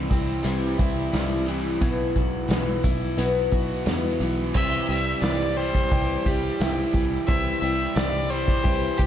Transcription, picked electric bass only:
0, 0, Header, 1, 2, 480
1, 0, Start_track
1, 0, Tempo, 683371
1, 1277, Time_signature, 4, 2, 24, 8
1, 6368, End_track
2, 0, Start_track
2, 0, Title_t, "Picked electric bass"
2, 0, Program_c, 0, 34
2, 75, Note_on_c, 0, 36, 89
2, 294, Note_off_c, 0, 36, 0
2, 313, Note_on_c, 0, 36, 87
2, 533, Note_off_c, 0, 36, 0
2, 557, Note_on_c, 0, 36, 89
2, 775, Note_off_c, 0, 36, 0
2, 796, Note_on_c, 0, 36, 89
2, 1249, Note_off_c, 0, 36, 0
2, 1273, Note_on_c, 0, 35, 95
2, 1493, Note_off_c, 0, 35, 0
2, 1517, Note_on_c, 0, 35, 81
2, 1736, Note_off_c, 0, 35, 0
2, 1747, Note_on_c, 0, 35, 85
2, 1970, Note_off_c, 0, 35, 0
2, 1995, Note_on_c, 0, 35, 81
2, 2214, Note_off_c, 0, 35, 0
2, 2230, Note_on_c, 0, 35, 79
2, 2452, Note_off_c, 0, 35, 0
2, 2474, Note_on_c, 0, 35, 79
2, 2694, Note_off_c, 0, 35, 0
2, 2715, Note_on_c, 0, 40, 84
2, 2934, Note_off_c, 0, 40, 0
2, 2952, Note_on_c, 0, 35, 78
2, 3173, Note_off_c, 0, 35, 0
2, 3196, Note_on_c, 0, 36, 93
2, 3364, Note_off_c, 0, 36, 0
2, 3433, Note_on_c, 0, 36, 79
2, 3603, Note_off_c, 0, 36, 0
2, 3667, Note_on_c, 0, 36, 87
2, 4006, Note_off_c, 0, 36, 0
2, 4155, Note_on_c, 0, 36, 90
2, 4323, Note_off_c, 0, 36, 0
2, 4393, Note_on_c, 0, 36, 88
2, 4562, Note_off_c, 0, 36, 0
2, 4639, Note_on_c, 0, 36, 84
2, 4806, Note_off_c, 0, 36, 0
2, 4872, Note_on_c, 0, 36, 90
2, 5041, Note_off_c, 0, 36, 0
2, 5118, Note_on_c, 0, 36, 99
2, 5285, Note_off_c, 0, 36, 0
2, 5353, Note_on_c, 0, 36, 79
2, 5522, Note_off_c, 0, 36, 0
2, 5592, Note_on_c, 0, 36, 91
2, 5929, Note_off_c, 0, 36, 0
2, 6077, Note_on_c, 0, 36, 85
2, 6243, Note_off_c, 0, 36, 0
2, 6316, Note_on_c, 0, 36, 85
2, 6368, Note_off_c, 0, 36, 0
2, 6368, End_track
0, 0, End_of_file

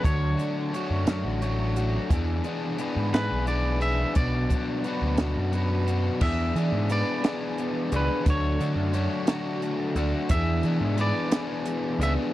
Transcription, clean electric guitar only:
0, 0, Header, 1, 2, 480
1, 0, Start_track
1, 0, Tempo, 684151
1, 32, Time_signature, 6, 3, 24, 8
1, 8654, End_track
2, 0, Start_track
2, 0, Title_t, "Clean electric guitar"
2, 0, Program_c, 0, 27
2, 35, Note_on_c, 0, 73, 95
2, 1208, Note_off_c, 0, 73, 0
2, 2203, Note_on_c, 0, 71, 83
2, 2438, Note_off_c, 0, 71, 0
2, 2441, Note_on_c, 0, 74, 83
2, 2677, Note_off_c, 0, 74, 0
2, 2680, Note_on_c, 0, 76, 94
2, 2919, Note_off_c, 0, 76, 0
2, 2922, Note_on_c, 0, 74, 92
2, 4093, Note_off_c, 0, 74, 0
2, 4366, Note_on_c, 0, 76, 99
2, 4853, Note_off_c, 0, 76, 0
2, 4855, Note_on_c, 0, 74, 88
2, 5586, Note_on_c, 0, 71, 73
2, 5588, Note_off_c, 0, 74, 0
2, 5819, Note_off_c, 0, 71, 0
2, 5824, Note_on_c, 0, 73, 74
2, 6981, Note_off_c, 0, 73, 0
2, 7232, Note_on_c, 0, 76, 94
2, 7723, Note_off_c, 0, 76, 0
2, 7725, Note_on_c, 0, 74, 81
2, 8409, Note_off_c, 0, 74, 0
2, 8440, Note_on_c, 0, 76, 99
2, 8504, Note_off_c, 0, 76, 0
2, 8654, End_track
0, 0, End_of_file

